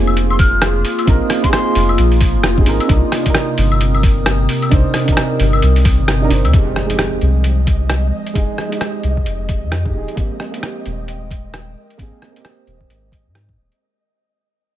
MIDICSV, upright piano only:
0, 0, Header, 1, 2, 480
1, 0, Start_track
1, 0, Tempo, 454545
1, 1138, Time_signature, 4, 2, 24, 8
1, 15590, End_track
2, 0, Start_track
2, 0, Title_t, "Upright piano"
2, 0, Program_c, 0, 0
2, 0, Control_c, 0, 64, 127
2, 0, Note_on_c, 0, 60, 90
2, 0, Note_on_c, 0, 63, 83
2, 0, Note_on_c, 0, 68, 101
2, 1094, Note_off_c, 0, 60, 0
2, 1112, Note_on_c, 0, 60, 98
2, 1116, Note_off_c, 0, 63, 0
2, 1133, Note_on_c, 0, 63, 94
2, 1137, Note_off_c, 0, 68, 0
2, 1152, Note_on_c, 0, 70, 111
2, 1473, Note_off_c, 0, 60, 0
2, 1487, Note_off_c, 0, 63, 0
2, 1489, Note_on_c, 0, 60, 95
2, 1497, Note_off_c, 0, 70, 0
2, 1525, Note_on_c, 0, 63, 83
2, 1569, Note_on_c, 0, 68, 102
2, 2677, Note_off_c, 0, 60, 0
2, 2696, Note_off_c, 0, 63, 0
2, 2702, Note_on_c, 0, 60, 93
2, 2718, Note_off_c, 0, 68, 0
2, 2728, Note_on_c, 0, 63, 87
2, 2746, Note_on_c, 0, 68, 100
2, 2777, Note_off_c, 0, 60, 0
2, 2792, Note_on_c, 0, 60, 90
2, 2797, Note_off_c, 0, 63, 0
2, 2806, Note_off_c, 0, 68, 0
2, 2813, Note_on_c, 0, 63, 87
2, 2834, Note_on_c, 0, 70, 105
2, 3023, Note_off_c, 0, 60, 0
2, 3026, Note_on_c, 0, 62, 90
2, 3028, Note_off_c, 0, 63, 0
2, 3044, Note_off_c, 0, 70, 0
2, 3044, Note_on_c, 0, 63, 82
2, 3068, Note_on_c, 0, 70, 95
2, 3072, Control_c, 0, 64, 0
2, 3240, Control_c, 0, 64, 127
2, 3385, Note_off_c, 0, 62, 0
2, 3401, Note_on_c, 0, 62, 95
2, 3402, Note_off_c, 0, 63, 0
2, 3415, Note_off_c, 0, 70, 0
2, 3437, Note_on_c, 0, 63, 82
2, 3480, Note_on_c, 0, 70, 98
2, 4934, Note_off_c, 0, 62, 0
2, 4952, Note_off_c, 0, 63, 0
2, 4956, Note_on_c, 0, 62, 102
2, 4973, Note_off_c, 0, 70, 0
2, 4973, Note_on_c, 0, 63, 94
2, 4994, Note_on_c, 0, 72, 115
2, 5305, Note_off_c, 0, 62, 0
2, 5321, Note_on_c, 0, 62, 95
2, 5327, Note_off_c, 0, 63, 0
2, 5338, Note_off_c, 0, 72, 0
2, 5363, Note_on_c, 0, 63, 83
2, 5406, Note_on_c, 0, 70, 101
2, 6514, Note_off_c, 0, 62, 0
2, 6534, Note_off_c, 0, 63, 0
2, 6550, Note_on_c, 0, 62, 93
2, 6556, Note_off_c, 0, 70, 0
2, 6568, Note_on_c, 0, 63, 84
2, 6593, Note_on_c, 0, 70, 101
2, 6615, Note_off_c, 0, 62, 0
2, 6631, Note_on_c, 0, 62, 91
2, 6634, Note_off_c, 0, 63, 0
2, 6650, Note_off_c, 0, 70, 0
2, 6650, Note_on_c, 0, 63, 83
2, 6674, Note_on_c, 0, 72, 97
2, 6862, Note_off_c, 0, 62, 0
2, 6872, Note_off_c, 0, 63, 0
2, 6884, Note_off_c, 0, 72, 0
2, 6890, Note_on_c, 0, 56, 87
2, 6911, Control_c, 0, 64, 0
2, 6912, Note_on_c, 0, 63, 78
2, 6931, Note_on_c, 0, 67, 93
2, 7113, Control_c, 0, 64, 127
2, 7229, Note_off_c, 0, 56, 0
2, 7245, Note_on_c, 0, 56, 86
2, 7257, Note_off_c, 0, 63, 0
2, 7266, Note_off_c, 0, 67, 0
2, 7289, Note_on_c, 0, 63, 78
2, 7332, Note_on_c, 0, 67, 97
2, 8776, Note_off_c, 0, 56, 0
2, 8798, Note_off_c, 0, 63, 0
2, 8802, Note_on_c, 0, 56, 94
2, 8819, Note_off_c, 0, 67, 0
2, 8822, Note_on_c, 0, 63, 86
2, 8844, Note_on_c, 0, 68, 105
2, 9150, Note_off_c, 0, 56, 0
2, 9165, Note_on_c, 0, 56, 86
2, 9171, Note_off_c, 0, 63, 0
2, 9183, Note_off_c, 0, 68, 0
2, 9209, Note_on_c, 0, 63, 78
2, 9250, Note_on_c, 0, 67, 92
2, 10356, Note_off_c, 0, 56, 0
2, 10377, Note_off_c, 0, 63, 0
2, 10397, Note_on_c, 0, 56, 82
2, 10398, Note_off_c, 0, 67, 0
2, 10416, Note_on_c, 0, 63, 77
2, 10437, Note_on_c, 0, 67, 94
2, 10472, Note_off_c, 0, 56, 0
2, 10481, Note_off_c, 0, 63, 0
2, 10492, Note_off_c, 0, 67, 0
2, 10496, Note_on_c, 0, 56, 83
2, 10518, Note_on_c, 0, 63, 78
2, 10535, Note_on_c, 0, 68, 93
2, 10715, Note_off_c, 0, 56, 0
2, 10719, Note_on_c, 0, 58, 83
2, 10725, Note_off_c, 0, 63, 0
2, 10734, Note_off_c, 0, 68, 0
2, 10748, Note_on_c, 0, 60, 73
2, 10753, Control_c, 0, 64, 0
2, 10763, Note_on_c, 0, 67, 90
2, 10907, Control_c, 0, 64, 127
2, 11080, Note_off_c, 0, 58, 0
2, 11095, Note_off_c, 0, 60, 0
2, 11101, Note_on_c, 0, 58, 85
2, 11102, Note_off_c, 0, 67, 0
2, 11141, Note_on_c, 0, 60, 74
2, 11187, Note_on_c, 0, 67, 94
2, 12624, Note_off_c, 0, 58, 0
2, 12644, Note_off_c, 0, 60, 0
2, 12645, Note_on_c, 0, 58, 88
2, 12664, Note_on_c, 0, 60, 82
2, 12667, Note_off_c, 0, 67, 0
2, 12690, Note_on_c, 0, 68, 96
2, 12991, Note_off_c, 0, 58, 0
2, 13007, Note_on_c, 0, 58, 78
2, 13013, Note_off_c, 0, 60, 0
2, 13026, Note_off_c, 0, 68, 0
2, 13048, Note_on_c, 0, 60, 74
2, 13092, Note_on_c, 0, 67, 86
2, 14196, Note_off_c, 0, 58, 0
2, 14217, Note_off_c, 0, 60, 0
2, 14239, Note_off_c, 0, 67, 0
2, 14591, Control_c, 0, 64, 0
2, 15590, End_track
0, 0, End_of_file